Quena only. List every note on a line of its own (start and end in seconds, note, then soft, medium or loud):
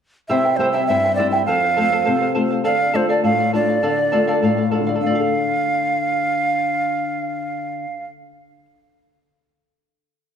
0.28 0.58 E5 medium
0.57 0.71 C5 medium
0.72 0.86 E5 medium
0.87 1.15 E5 medium
1.15 1.30 D5 medium
1.30 1.45 E5 medium
1.46 2.31 F5 medium
2.65 2.97 F5 medium
2.96 3.09 C5 medium
3.10 3.23 D5 medium
3.24 3.51 F5 medium
3.55 4.67 D5 medium
5.01 8.06 F5 medium